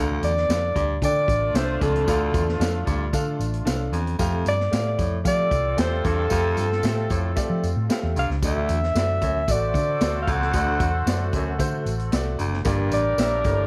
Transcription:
Already playing: D2 D3 D4 A4 F5
0.22 E2 D5, closed hi-hat, tambourine
0.37 snare
0.49 F2 D4 A4 F5, snare, closed hi-hat, tambourine
0.75 D2 G2, kick, closed hi-hat, tambourine
1.02 D3 A3 D4 F4 A4 D5 G5, kick, closed hi-hat, tambourine
1.28 A1, kick, closed hi-hat, tambourine
1.54 C2 D4 A4 C5 E5, snare, closed hi-hat, tambourine
1.81 C#2 F2 A4, kick, closed hi-hat, tambourine
1.95 closed hi-hat
2.07 D2 D3 D4 A4 F5, kick, closed hi-hat, tambourine
2.34 E2, kick, closed hi-hat, tambourine
2.49 snare
2.60 F2 D4 A4 F5, snare, closed hi-hat, tambourine
2.86 D2 G2, kick, closed hi-hat, tambourine
3.13 D3 D4 A4 F5, kick, closed hi-hat, tambourine
3.39 A1, closed hi-hat, tambourine
3.53 closed hi-hat
3.65 C2 D4 A4 F5, snare, closed hi-hat, tambourine
3.92 E2 F2, closed hi-hat, tambourine
4.07 closed hi-hat
4.18 F2 A3 G4 F5, kick, closed hi-hat, tambourine
4.46 G2 D5, closed hi-hat, tambourine
4.60 snare
4.71 A2 A3 G4 F5, snare, closed hi-hat, tambourine
4.98 F2 A2, kick, closed hi-hat, tambourine
5.24 F3 A3 C4 F4 G4 A4 D5 F5, kick, closed hi-hat, tambourine
5.51 C2, kick, closed hi-hat, tambourine
5.77 E2 A3 G4 C5 G5, snare, closed hi-hat, tambourine
6.04 E2 G2 A4, kick, closed hi-hat, tambourine
6.30 F2 A3 G4 F5, kick, closed hi-hat, tambourine
6.57 G2, closed hi-hat, tambourine
6.72 snare
6.83 A2 A3 G4 A4, snare, closed hi-hat, tambourine
7.10 F2 A2, kick, closed hi-hat, tambourine
7.36 A3 G4 D5, kick, closed hi-hat, tambourine
7.50 F3
7.63 F2, closed hi-hat, tambourine
7.76 A2
7.90 A3 G4 F5, snare, closed hi-hat, tambourine
8.03 E2
8.16 C2 G2 F5, closed hi-hat, tambourine
8.30 C#2, snare
8.42 D2 D3 A3 F#4 D5 E5, kick, closed hi-hat, tambourine
8.69 E2, closed hi-hat, tambourine
8.83 snare
8.95 F#2 A3 F#4 D5, snare, closed hi-hat, tambourine
9.22 D2 F#2, kick, closed hi-hat, tambourine
9.48 A1 A3 F#4 A4 C5 D5, kick, closed hi-hat, tambourine
9.74 D3, kick, closed hi-hat, tambourine
10.00 D2 A3 F#4 D5, snare, closed hi-hat, tambourine
10.22 F5
10.27 C#2 F2, kick, closed hi-hat, tambourine
10.32 F#5
10.42 snare
10.53 D2 D3 A3 F#4 D5, kick, closed hi-hat, tambourine
10.80 E2, kick, closed hi-hat, tambourine
11.06 F#2 A3 F#4 D5, snare, closed hi-hat, tambourine
11.33 D2 F#2, kick, closed hi-hat, tambourine
11.58 D3 A3 F#4 C5, kick, closed hi-hat, tambourine
11.86 A1, closed hi-hat, tambourine
11.99 closed hi-hat
12.12 C2 A3 F#4 D5, snare, closed hi-hat, tambourine
12.38 F#1 D2, closed hi-hat, tambourine
12.53 snare
12.65 G1 G2 A#3 D4 G4 A#4 D5, kick, closed hi-hat, tambourine
12.91 A1 D5, closed hi-hat, tambourine
13.18 A#1 A#3 G4 E5, snare, closed hi-hat, tambourine
13.44 G1 A2, kick, closed hi-hat, tambourine

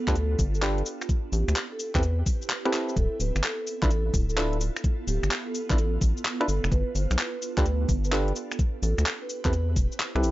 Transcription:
Already playing: B3 D4 F4 A4
0.08 D2 D4 F4 G4 A4 B4, kick, clap, closed hi-hat, cabasa
0.16 A4, closed hi-hat, cabasa
0.39 G1, kick, open hi-hat, cabasa
0.55 A4, cabasa
0.62 D4 F4 G4 A4 B4, clap, closed hi-hat, cabasa
0.78 closed hi-hat
0.86 C4 E4 G4 B4, open hi-hat, cabasa
1.02 finger snap, cabasa
1.09 kick, closed hi-hat, cabasa
1.32 A1 G4, open hi-hat, cabasa
1.48 D2, finger snap, closed hi-hat, cabasa
1.56 clap, closed hi-hat, cabasa
1.72 A4
1.79 open hi-hat, cabasa
1.95 E2 C4 E4 G4 A4 B4, kick, clap, closed hi-hat, cabasa
2.03 closed hi-hat, cabasa
2.26 kick, open hi-hat, cabasa
2.42 cabasa
2.50 clap, closed hi-hat, cabasa
2.65 C4 E4 G4 A4 B4 E5, finger snap, closed hi-hat
2.73 clap, open hi-hat, cabasa
2.89 cabasa
2.96 D1 B3 F4 A4, kick, closed hi-hat, cabasa
3.20 D1 B4, open hi-hat, cabasa
3.35 G1, finger snap, closed hi-hat, cabasa
3.44 A4, clap, closed hi-hat, cabasa
3.67 open hi-hat, cabasa
3.82 A1 D4 E4 F4 A4 B4, kick, clap, closed hi-hat, cabasa
3.90 A4, closed hi-hat, cabasa
4.14 D1, kick, open hi-hat, cabasa
4.29 A4, cabasa
4.37 D4 E4 F4 A4 B4, clap, closed hi-hat, cabasa
4.53 closed hi-hat
4.61 open hi-hat, cabasa
4.76 finger snap, cabasa
4.84 kick, closed hi-hat, cabasa
5.08 D1 G4, open hi-hat, cabasa
5.23 G1, finger snap, closed hi-hat, cabasa
5.31 clap, closed hi-hat, cabasa
5.47 A4
5.55 open hi-hat, cabasa
5.70 A1 D4 E4 F4 A4 B4, kick, clap, closed hi-hat, cabasa
5.78 closed hi-hat, cabasa
6.01 A1, kick, open hi-hat, cabasa
6.17 cabasa
6.25 clap, closed hi-hat, cabasa
6.40 D4 E4 F4 A4 B4, finger snap, closed hi-hat
6.48 G1 D4 A4, open hi-hat, cabasa
6.64 F1, finger snap, cabasa
6.71 G1 B4, kick, closed hi-hat, cabasa
6.95 G1 C5, open hi-hat, cabasa
7.11 B1, finger snap, closed hi-hat, cabasa
7.19 B4, clap, closed hi-hat, cabasa
7.42 open hi-hat, cabasa
7.58 D2 D4 F4 G4 A4 B4, kick, clap, closed hi-hat, cabasa
7.65 B4, closed hi-hat, cabasa
7.89 G1, kick, open hi-hat, cabasa
8.04 B4, cabasa
8.12 D4 F4 G4 A4 B4, clap, closed hi-hat, cabasa
8.28 closed hi-hat
8.36 C4 E4 G4 B4, open hi-hat, cabasa
8.52 finger snap, cabasa
8.59 kick, closed hi-hat, cabasa
8.83 A1 A4, open hi-hat, cabasa
8.98 D2, finger snap, closed hi-hat, cabasa
9.06 clap, closed hi-hat, cabasa
9.22 B4
9.30 open hi-hat, cabasa
9.45 E2 C4 E4 G4 A4 B4, kick, clap, closed hi-hat, cabasa
9.53 closed hi-hat, cabasa
9.76 E1, kick, open hi-hat, cabasa
9.92 cabasa
10.00 clap, closed hi-hat, cabasa
10.15 C2 C4 E4 G4 A4 B4, finger snap, closed hi-hat
10.23 A1, open hi-hat, cabasa

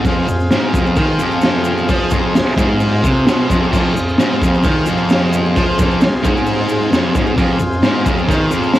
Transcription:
0.05 F2 F4 G#4 C5, kick, open hi-hat, shaker
0.28 F2, shaker
0.40 shaker
0.51 G#2, snare, open hi-hat, shaker
0.74 F2, kick, shaker
0.86 shaker
0.96 D#3, kick, open hi-hat, shaker
1.19 F2, shaker
1.31 shaker
1.41 snare, open hi-hat, shaker
1.64 shaker
1.78 shaker
1.88 F3, kick, open hi-hat, shaker
2.10 F2, kick, shaker
2.35 snare, open hi-hat, shaker
2.57 G#2, kick, shaker
2.80 open hi-hat, shaker
3.03 C3, kick, shaker
3.16 shaker
3.26 B2, snare, open hi-hat, shaker
3.50 F2, kick, shaker
3.63 shaker
3.71 F2 F4 G#4 C5, kick, crash, shaker
3.95 F2, shaker
4.09 shaker
4.18 G#2, snare, open hi-hat, shaker
4.42 F2, kick, shaker
4.54 shaker
4.63 D#3, kick, open hi-hat, shaker
4.86 F2, shaker
4.98 shaker
5.09 snare, open hi-hat, shaker
5.33 shaker
5.45 shaker
5.56 F3, kick, open hi-hat, shaker
5.79 F2, kick, shaker
5.91 shaker
6.01 snare, open hi-hat, shaker
6.23 G#2, kick, shaker
6.37 shaker
6.46 open hi-hat, shaker
6.69 shaker
6.82 shaker
6.92 F2, snare, open hi-hat, shaker
7.15 G#2, kick, shaker
7.26 shaker
7.37 F2 F4 G#4 C5, kick, open hi-hat, shaker
7.59 F2, shaker
7.73 shaker
7.83 G#2, snare, open hi-hat, shaker
8.06 F2, kick, shaker
8.18 shaker
8.28 D#3, kick, open hi-hat, shaker
8.51 F2, shaker
8.63 shaker
8.74 snare, open hi-hat, shaker

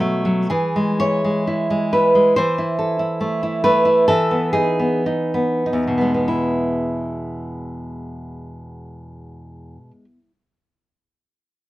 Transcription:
Already playing: B2 F#3 F#4
0.00 A3
0.25 F#3
0.50 E3 G#4
0.76 G#3
1.00 E4 C#5
1.24 G#3
1.47 E4
1.70 G#3
1.93 E4 B4
2.15 G#3
2.36 E3 C5
2.58 E4
2.79 A4
2.99 E4
3.21 A3
3.43 E4
3.64 A3 B4
3.85 E4
4.08 E3 A4
4.31 B3
4.53 D#4 G#4
4.79 B3
5.06 D#4
5.34 B3
5.66 D#4
5.73 E2
5.87 B2
5.98 G#3 B3
6.14 B3
6.28 E4

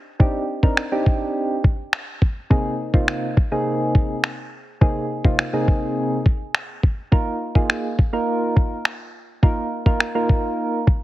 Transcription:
0.20 C4 D4 D#4 G4, kick
0.63 C4 D4 D#4 A#4, kick
0.77 finger snap
0.92 C4 D4 D#4 G4
1.06 kick
1.64 kick
1.93 finger snap
2.22 kick
2.50 C3 A#3 C4 D#4 G#4, kick
2.94 C3 A#3 C4 D#4 F4, kick
3.08 finger snap
3.37 kick
3.51 C3 A#3 C4 D#4 G#4
3.95 kick
4.24 finger snap
4.81 C3 A#3 C4 D#4 G#4, kick
5.24 C3 A#3 C4 D#4 F4, kick
5.39 finger snap
5.53 C3 A#3 C4 D#4 G#4
5.68 kick
6.26 kick
6.55 finger snap
6.83 kick
7.12 A#3 D#4 F4 A#4, kick
7.55 A#3 D#4 F4 G#4, kick
7.70 finger snap
7.99 kick
8.13 A#3 D#4 F4 A#4
8.57 kick
8.85 finger snap
9.43 A#3 D#4 F4 A#4, kick
9.86 A#3 D#4 F4 A#4, kick
10.00 finger snap
10.15 A#3 D#4 F4 A#4
10.29 kick
10.87 kick

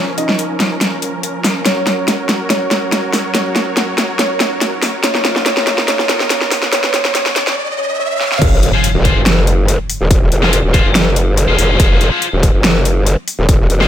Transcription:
Already playing: F3 C#4 A#4
0.18 D#4 D#5, closed hi-hat
0.29 snare
0.39 closed hi-hat
0.60 snare, closed hi-hat
0.81 snare, closed hi-hat
1.02 closed hi-hat
1.23 closed hi-hat
1.44 snare, open hi-hat
1.65 F#3 C#4 F#4 C#5, snare, closed hi-hat, riser
1.87 snare, closed hi-hat
2.08 snare, closed hi-hat
2.29 snare, closed hi-hat
2.50 C#4 C#5, snare, closed hi-hat
2.71 snare, closed hi-hat
2.92 snare, closed hi-hat
3.13 snare, open hi-hat
3.35 C#4 C#5, snare, closed hi-hat
3.56 snare, closed hi-hat
3.77 snare, closed hi-hat
3.98 snare, closed hi-hat
4.19 C#4 C#5, snare, closed hi-hat
4.40 snare, closed hi-hat
4.61 snare, closed hi-hat
4.83 snare, open hi-hat
5.04 C#4 D#4 F4 A#4 C#5, snare, closed hi-hat
5.15 snare
5.25 snare, closed hi-hat
5.36 snare
5.46 C#4 C#5, snare, closed hi-hat
5.57 snare
5.67 snare, closed hi-hat
5.78 snare
5.88 C#4 C#5, snare, closed hi-hat
5.99 snare
6.09 snare, closed hi-hat
6.20 snare
6.30 C#4 C#5, snare, closed hi-hat
6.42 snare
6.51 snare, open hi-hat
6.63 snare
6.73 C#4 C#5, snare, closed hi-hat
6.84 snare
6.94 C#4 C#5, snare, closed hi-hat
7.05 snare
7.15 C#4 C#5, snare, closed hi-hat
7.26 snare
7.36 C#4 C#5, snare, closed hi-hat
7.47 snare
7.57 C#4 C#5
7.78 C#4 C#5
7.99 C#4 C#5
8.21 C#4 C#5, snare
8.32 snare
8.42 F1, kick, closed hi-hat, crash, impact
8.63 closed hi-hat
8.74 F4 G#4 C5
8.84 closed hi-hat
8.95 D#1
9.05 F4 G#4 C5, kick, closed hi-hat
9.16 F#1
9.26 snare, closed hi-hat
9.47 closed hi-hat
9.68 closed hi-hat
9.90 open hi-hat
10.01 D#1
10.11 kick, closed hi-hat
10.32 F1, closed hi-hat
10.43 F4 G#4 C5, snare
10.53 closed hi-hat
10.64 D#1
10.74 F4 G#4 C5, kick, closed hi-hat
10.85 F#1
10.95 snare, closed hi-hat
11.16 closed hi-hat
11.37 closed hi-hat
11.48 F1 F4 G#4 C5
11.59 F1, open hi-hat
11.80 F1, kick, closed hi-hat
12.01 closed hi-hat
12.12 F4 G#4 C5
12.22 closed hi-hat
12.33 D#1
12.43 kick, closed hi-hat
12.54 F#1
12.64 snare, closed hi-hat
12.85 closed hi-hat
13.06 closed hi-hat
13.28 open hi-hat
13.39 D#1
13.49 kick, closed hi-hat
13.70 F1, closed hi-hat
13.81 F4 G#4 C5, snare

